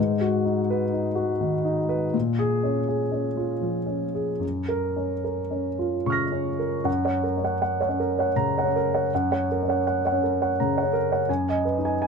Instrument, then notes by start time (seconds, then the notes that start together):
grand piano
Already playing: G#2 B4
0.21 F#4
0.45 D#4
0.70 B4
0.92 D#4
1.15 F#4
1.41 D#3
1.64 D#4
1.89 B4
2.14 A#2
2.39 G#4
2.63 C#4
2.88 G#4
3.12 C#4
3.37 F4
3.61 F3
3.86 C#4
4.14 G#4
4.40 F#2
4.69 A#4
4.96 C#4
5.24 A#4
5.51 C#4
5.79 F4
6.06 C#3 C#6 F6
6.12 A#6
6.32 C#4
6.59 A#4
6.84 F#2 F#5
7.05 C#5 F#5
7.23 A#4
7.37 C#4
7.44 C#5 F#5
7.62 F#5
7.80 C#5 F#5
7.89 C#4
8.00 A#4
8.19 C#5 F#5
8.36 C#3 A#5
8.58 C#5 F#5
8.64 C#4
8.76 A#4
8.94 C#5 F#5
9.15 F#2 F#5
9.32 C#5 F#5
9.52 A#4
9.63 C#4
9.69 C#5 F#5
9.87 F#5
10.05 C#5 F#5
10.12 C#4
10.23 A#4
10.42 C#5 F#5
10.60 C#3 A#5
10.77 C#5 F#5
10.82 C#4
10.93 A#4
11.12 C#5 F#5
11.29 F#2 G#5
11.49 D#5 G#5
11.65 B4
11.78 D#4
11.85 D#5 G#5
12.02 G#5